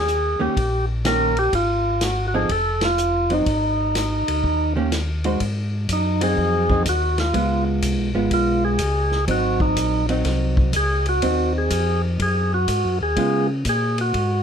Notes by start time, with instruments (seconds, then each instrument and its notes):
Already playing: tonewheel organ D#2 G#4
0.08 hi-hat pedal
0.39 tonewheel organ D#2 G4, hollow-body jazz guitar D#3 A#3 C#4 G4
0.57 tonewheel organ A#1, kick, ride
1.05 hollow-body jazz guitar D#3 A#3 C#4 G4, tonewheel organ A#4, snare, hi-hat pedal, ride
1.37 tonewheel organ G4, ride
1.53 tonewheel organ G#1 F4, kick, ride
2.01 tonewheel organ F#4, snare, hi-hat pedal, ride
2.28 tonewheel organ F#4
2.34 hollow-body jazz guitar F3 C4 D#4 A4, tonewheel organ G#4
2.49 tonewheel organ F1 A4, kick, ride
2.81 tonewheel organ F4, snare, ride
2.98 hi-hat pedal
3.30 hollow-body jazz guitar F#3 C4 D#4, tonewheel organ D#4, ride
3.46 tonewheel organ G#1, kick, ride
3.95 snare, hi-hat pedal, ride
4.28 tonewheel organ D2, ride
4.44 tonewheel organ D#2, kick
4.76 hollow-body jazz guitar D#3 A#3 C#4 G4
4.92 snare, hi-hat pedal, ride
5.24 hollow-body jazz guitar G#3 D#4 F#4 C5, ride
5.40 tonewheel organ G#2, kick, ride
5.89 tonewheel organ F#2 D#4, kick, hi-hat pedal, ride
6.21 hollow-body jazz guitar F#3 C4 D#4, tonewheel organ G#4, ride
6.37 tonewheel organ F2, kick
6.70 hollow-body jazz guitar F#3 C4 D#4, kick
6.86 tonewheel organ D#2 F#4, kick, hi-hat pedal, ride
7.18 tonewheel organ F4, snare, ride
7.34 tonewheel organ C#2, hollow-body jazz guitar G#3 B3 F4, kick, ride
7.82 tonewheel organ C2, kick, hi-hat pedal, ride
7.99 tonewheel organ B1
8.14 tonewheel organ G#1, hollow-body jazz guitar G#3 B3 F4
8.31 tonewheel organ B1 F4, kick, ride
8.65 tonewheel organ G#4
8.79 tonewheel organ C#2, kick, hi-hat pedal, ride
9.11 snare
9.28 tonewheel organ G#1 F#4, hollow-body jazz guitar F#3 C4 D#4, kick, ride
9.60 tonewheel organ D#4, kick
9.76 tonewheel organ A#1, kick, hi-hat pedal, ride
10.09 hollow-body jazz guitar F#3 C4 D#4, ride
10.25 tonewheel organ C2, kick, snare, ride
10.57 kick
10.73 tonewheel organ C#2 G#4, kick, hi-hat pedal, ride
11.06 tonewheel organ F#4, ride
11.22 tonewheel organ D#2, hollow-body jazz guitar C4 D#4, kick, ride
11.58 tonewheel organ G#4
11.70 tonewheel organ F2, kick, hi-hat pedal, ride
12.20 tonewheel organ F#2 G#4, kick, ride
12.54 tonewheel organ F#4
12.68 tonewheel organ G#2, kick, hi-hat pedal, ride
12.84 tonewheel organ F#2
13.01 tonewheel organ D#2 G#4
13.17 tonewheel organ C#3, hollow-body jazz guitar G#3 B3 F4, kick, ride
13.65 tonewheel organ A#2, kick, hi-hat pedal, ride
13.69 tonewheel organ G#4
13.98 tonewheel organ F#4, ride
14.14 tonewheel organ G#2, kick, ride